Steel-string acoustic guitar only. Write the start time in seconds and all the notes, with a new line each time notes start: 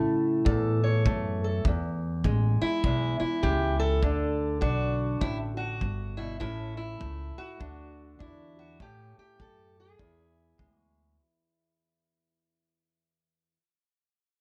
Already playing: A2 A3 E4
0.45 E2 A4
0.84 C#5
1.06 A3
1.44 A4
1.67 E2
2.25 G#3
2.62 E4
2.85 E2 G#3
3.20 E4
3.43 G#3 G4
3.79 A4
4.03 D3 D4
4.61 D4 F#4
5.21 A2 E4
5.57 F#4
6.17 B2 E4
6.40 A2 A3 C#4 E4
6.77 E4
7.00 A3
7.38 F#4
7.60 D3 D4
8.19 D4 E4
8.59 F#4
8.80 A2 A3 C#4 G4
9.19 G4
9.39 A3 A4
9.80 G#4
9.98 E2 E4
10.58 G#3
10.76 F#4